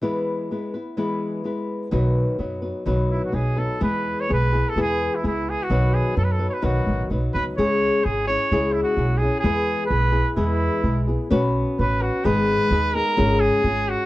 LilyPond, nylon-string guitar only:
\new Staff \with { instrumentName = "Nylon-string guitar" } { \time 2/4 \key e \major \tempo 4 = 128 <e gis b e' b'>4 <gis b e' b'>8 <b e' b'>8 | <e gis b e' b'>4 <gis b e' b'>4 | <b, dis fis b dis' b'>4 <fis b dis' b'>8 <fis b dis' b'>8 | <b, dis fis b dis' b'>4 <fis b dis' b'>8 <fis b dis' b'>8 |
<e gis b e' gis'>4 <gis b e' gis'>8 <b e' gis'>8 | <e gis b e' gis'>4 <gis b e' gis'>4 | <b, dis fis b dis' b'>4 <fis b dis' b'>8 <fis b dis' b'>8 | <b, dis fis b dis' b'>4 <fis b dis' b'>8 <fis b dis' b'>8 |
<cis gis cis' e' gis'>4 <gis cis' e' gis'>8 <cis' e' gis'>8 | <cis gis cis' e' gis'>4 <gis cis' e' gis'>8 <cis' e' gis'>8 | <e gis b e' gis'>4 <gis b e' gis'>8 <b e' gis'>8 | <e gis b e' gis'>4 <gis b e' gis'>8 <b e' gis'>8 |
\key b \major <b cis' fis' b'>4 <b cis' fis' b'>4 | <gis, dis gis b dis' gis'>4 <gis b dis' gis'>8 <gis b dis' gis'>8 | <gis, cis gis cis' eis' gis'>4 <gis cis' eis' gis'>4 | }